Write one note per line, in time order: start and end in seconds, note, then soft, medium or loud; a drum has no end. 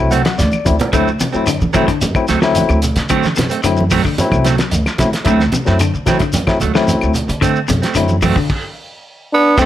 0.00 0.21 C2 medium
0.00 0.11 F#3 medium
0.00 0.12 A3 medium
0.00 0.12 C4 medium
0.00 0.12 E4 medium
0.11 0.25 F#3 medium
0.11 0.24 A3 medium
0.11 0.23 C4 medium
0.11 0.36 F#5 medium
0.11 closed hi-hat medium
0.11 low conga medium
0.11 shekere medium
0.25 0.41 F#3 medium
0.25 muted clean electric guitar stroke soft
0.25 snare medium
0.25 closed hi-hat soft
0.25 shekere soft
0.38 0.51 D2 medium
0.38 0.89 D5 medium
0.38 snare soft
0.38 closed hi-hat medium
0.38 high conga medium
0.38 shekere medium
0.52 high conga medium
0.52 claves medium
0.52 shekere soft
0.65 0.78 D2 medium
0.65 0.75 F#3 medium
0.65 0.75 A3 medium
0.65 0.75 C4 medium
0.65 0.75 E4 medium
0.65 muted clean electric guitar stroke soft
0.65 kick medium
0.65 closed hi-hat medium
0.65 high conga medium
0.65 shekere medium
0.80 muted clean electric guitar stroke soft
0.80 closed hi-hat soft
0.80 low conga loud
0.80 shekere soft
0.93 1.16 D2 loud
0.93 1.08 D3 medium
0.93 1.07 F#3 medium
0.93 1.10 F#3 medium
0.93 1.10 A3 medium
0.93 1.07 A3 medium
0.93 1.10 C4 medium
0.93 1.08 C4 medium
0.93 1.08 E4 medium
0.93 kick medium
0.93 closed hi-hat medium
0.93 claves medium
0.93 shekere medium
1.08 shekere soft
1.19 1.36 C3 medium
1.19 muted clean electric guitar stroke soft
1.19 muted upright bass stroke soft
1.19 closed hi-hat soft
1.19 high conga medium
1.19 shekere medium
1.33 1.57 F#2 medium
1.33 1.47 F#3 medium
1.33 1.46 A3 soft
1.33 1.48 A3 medium
1.33 1.46 C4 medium
1.33 1.48 C4 medium
1.33 1.49 E4 medium
1.33 shekere soft
1.46 1.62 D3 medium
1.46 muted clean electric guitar stroke soft
1.46 closed hi-hat medium
1.46 claves medium
1.46 shekere medium
1.60 1.84 D3 medium
1.60 muted clean electric guitar stroke soft
1.60 high conga medium
1.60 shekere soft
1.73 1.82 E3 medium
1.73 1.87 F#3 medium
1.73 1.88 F#3 medium
1.73 1.87 A3 medium
1.73 1.88 A3 medium
1.73 1.86 C4 medium
1.73 1.89 C4 medium
1.73 1.89 E4 medium
1.73 kick medium
1.73 closed hi-hat soft
1.73 high conga medium
1.73 low conga medium
1.73 claves medium
1.73 shekere medium
1.87 2.03 D3 medium
1.87 muted clean electric guitar stroke soft
1.87 kick medium
1.87 closed hi-hat medium
1.87 shekere soft
2.01 2.14 F#2 medium
2.01 closed hi-hat medium
2.01 high conga medium
2.01 shekere medium
2.15 2.24 F#3 medium
2.15 2.24 A3 medium
2.15 2.25 C4 medium
2.15 2.25 E4 medium
2.15 muted clean electric guitar stroke soft
2.15 kick medium
2.15 claves medium
2.15 shekere soft
2.28 2.63 D2 medium
2.28 2.42 F#3 medium
2.28 2.42 A3 medium
2.28 2.41 C4 medium
2.28 snare soft
2.28 closed hi-hat medium
2.28 shekere medium
2.42 2.78 F#3 medium
2.42 2.57 F#3 medium
2.42 2.79 A3 medium
2.42 2.79 C4 medium
2.42 2.79 E4 loud
2.42 muted clean electric guitar stroke soft
2.42 snare medium
2.42 shekere soft
2.55 closed hi-hat medium
2.55 high conga medium
2.55 shekere medium
2.69 2.92 D2 medium
2.69 claves medium
2.69 shekere soft
2.82 muted clean electric guitar stroke soft
2.82 closed hi-hat medium
2.82 low conga medium
2.82 shekere medium
2.96 3.30 D3 medium
2.96 muted clean electric guitar stroke soft
2.96 snare soft
2.96 closed hi-hat medium
2.96 shekere soft
3.09 3.25 D3 medium
3.09 3.26 F#3 medium
3.09 3.26 A3 medium
3.09 3.26 C4 loud
3.09 kick medium
3.09 closed hi-hat medium
3.09 claves medium
3.09 shekere medium
3.23 snare soft
3.23 high conga medium
3.23 shekere soft
3.36 3.49 F#2 medium
3.36 3.52 C3 medium
3.36 muted clean electric guitar stroke soft
3.36 snare soft
3.36 closed hi-hat soft
3.36 high conga medium
3.36 low conga medium
3.36 shekere medium
3.49 3.62 A3 soft
3.49 3.62 C4 medium
3.49 closed hi-hat medium
3.49 shekere soft
3.63 3.98 F#2 medium
3.63 3.79 D3 medium
3.63 3.82 F#3 medium
3.63 3.83 A3 medium
3.63 3.83 C4 medium
3.63 3.83 E4 medium
3.63 muted clean electric guitar stroke soft
3.63 closed hi-hat medium
3.63 claves medium
3.63 shekere medium
3.77 muted clean electric guitar stroke soft
3.77 high conga medium
3.77 shekere soft
3.91 3.99 E3 medium
3.91 4.05 F#3 medium
3.91 4.04 A3 medium
3.91 4.03 C4 medium
3.91 kick medium
3.91 open hi-hat medium
3.91 high conga medium
3.91 low conga medium
3.91 claves medium
3.91 shekere medium
4.04 4.16 D3 medium
4.04 4.20 D3 medium
4.04 muted clean electric guitar stroke soft
4.04 kick medium
4.04 shekere soft
4.18 4.46 F#3 medium
4.18 4.46 A3 medium
4.18 4.47 C4 medium
4.18 4.47 E4 medium
4.18 closed hi-hat medium
4.18 high conga medium
4.18 shekere medium
4.31 4.54 C2 medium
4.31 muted clean electric guitar stroke soft
4.31 kick medium
4.31 high conga medium
4.31 claves medium
4.31 shekere soft
4.44 4.59 F#3 medium
4.44 4.58 A3 medium
4.44 4.57 C4 medium
4.44 snare soft
4.44 closed hi-hat medium
4.44 low conga medium
4.44 shekere medium
4.58 4.76 F#3 medium
4.58 muted clean electric guitar stroke soft
4.58 snare medium
4.58 closed hi-hat soft
4.58 shekere soft
4.71 4.83 D2 medium
4.71 closed hi-hat medium
4.71 high conga medium
4.71 shekere medium
4.86 snare soft
4.86 claves medium
4.86 shekere soft
4.98 5.10 D2 medium
4.98 5.08 F#3 medium
4.98 5.08 A3 medium
4.98 5.09 C4 medium
4.98 5.09 E4 medium
4.98 muted clean electric guitar stroke soft
4.98 kick medium
4.98 snare soft
4.98 closed hi-hat medium
4.98 high conga medium
4.98 low conga medium
4.98 shekere medium
5.13 muted clean electric guitar stroke soft
5.13 snare soft
5.13 closed hi-hat medium
5.13 shekere soft
5.24 5.48 D2 loud
5.24 5.42 D3 medium
5.24 5.39 F#3 medium
5.24 5.43 F#3 medium
5.24 5.40 A3 medium
5.24 5.43 A3 medium
5.24 5.40 C4 medium
5.24 5.43 C4 loud
5.24 5.40 E4 medium
5.24 kick medium
5.24 closed hi-hat medium
5.24 claves medium
5.24 shekere medium
5.40 snare soft
5.40 high conga medium
5.40 shekere soft
5.52 5.69 C3 medium
5.52 muted clean electric guitar stroke soft
5.52 muted upright bass stroke soft
5.52 closed hi-hat soft
5.52 high conga medium
5.52 low conga medium
5.52 shekere medium
5.65 5.90 F#2 medium
5.65 5.80 F#3 medium
5.65 5.80 A3 medium
5.65 5.79 A3 soft
5.65 5.79 C4 medium
5.65 5.81 C4 medium
5.65 5.81 E4 medium
5.65 snare soft
5.65 shekere soft
5.79 5.96 D3 medium
5.79 muted clean electric guitar stroke soft
5.79 closed hi-hat medium
5.79 claves medium
5.79 shekere medium
5.94 6.17 D3 medium
5.94 muted clean electric guitar stroke soft
5.94 shekere soft
6.06 6.16 E3 medium
6.06 6.21 F#3 medium
6.06 6.21 A3 medium
6.06 6.21 C4 medium
6.06 6.19 C4 medium
6.06 6.21 E4 medium
6.06 kick medium
6.06 snare soft
6.06 closed hi-hat soft
6.06 high conga medium
6.06 low conga medium
6.06 claves medium
6.06 shekere medium
6.19 6.37 D3 medium
6.19 muted clean electric guitar stroke soft
6.19 kick medium
6.19 closed hi-hat soft
6.19 shekere soft
6.33 6.46 F#2 medium
6.33 closed hi-hat medium
6.33 high conga medium
6.33 shekere medium
6.47 6.57 F#3 medium
6.47 6.57 A3 medium
6.47 6.57 C4 medium
6.47 6.58 E4 medium
6.47 muted clean electric guitar stroke soft
6.47 kick medium
6.47 snare soft
6.47 high conga medium
6.47 claves medium
6.47 shekere soft
6.60 6.96 D2 medium
6.60 6.75 F#3 medium
6.60 6.73 A3 medium
6.60 closed hi-hat medium
6.60 low conga medium
6.60 shekere medium
6.74 7.11 F#3 medium
6.74 6.90 F#3 medium
6.74 7.11 A3 medium
6.74 7.12 C4 medium
6.74 7.12 E4 medium
6.74 muted clean electric guitar stroke soft
6.74 snare medium
6.74 shekere soft
6.88 closed hi-hat medium
6.88 high conga medium
6.88 shekere medium
7.01 7.25 D2 medium
7.01 claves medium
7.01 shekere soft
7.14 muted clean electric guitar stroke soft
7.14 closed hi-hat medium
7.14 low conga medium
7.14 shekere medium
7.28 7.63 D3 medium
7.28 muted clean electric guitar stroke soft
7.28 closed hi-hat soft
7.28 shekere soft
7.41 7.57 D3 medium
7.41 7.59 A3 medium
7.41 7.59 C4 medium
7.41 muted clean electric guitar stroke medium
7.41 kick medium
7.41 closed hi-hat medium
7.41 claves medium
7.41 shekere medium
7.56 shekere soft
7.68 7.81 F#2 medium
7.68 7.84 C3 medium
7.68 muted clean electric guitar stroke soft
7.68 closed hi-hat soft
7.68 high conga medium
7.68 low conga medium
7.68 shekere medium
7.82 7.96 A3 soft
7.82 7.96 C4 soft
7.82 snare soft
7.82 closed hi-hat soft
7.82 shekere soft
7.95 8.30 F#2 medium
7.95 8.11 D3 medium
7.95 8.14 F#3 medium
7.95 8.15 A3 medium
7.95 8.15 C4 medium
7.95 8.15 E4 medium
7.95 muted clean electric guitar stroke soft
7.95 closed hi-hat medium
7.95 claves medium
7.95 shekere medium
8.08 muted clean electric guitar stroke soft
8.08 high conga medium
8.08 shekere soft
8.22 8.30 E3 medium
8.22 8.37 F#3 medium
8.22 8.37 A3 medium
8.22 8.37 C4 medium
8.22 kick medium
8.22 open hi-hat medium
8.22 high conga medium
8.22 low conga medium
8.22 claves medium
8.22 shekere medium
8.36 8.48 D3 medium
8.36 8.51 D3 medium
8.36 muted clean electric guitar stroke soft
8.36 kick medium
8.36 shekere soft
8.50 kick medium
8.50 crash medium
9.33 9.58 B3 medium
9.33 9.57 D4 medium
9.58 9.65 D2 loud
9.58 9.65 D3 medium
9.58 9.65 F#3 medium
9.58 9.65 A3 medium
9.58 9.65 C4 medium
9.58 9.65 C4 loud
9.58 kick medium
9.58 crash medium
9.58 claves medium
9.58 shekere medium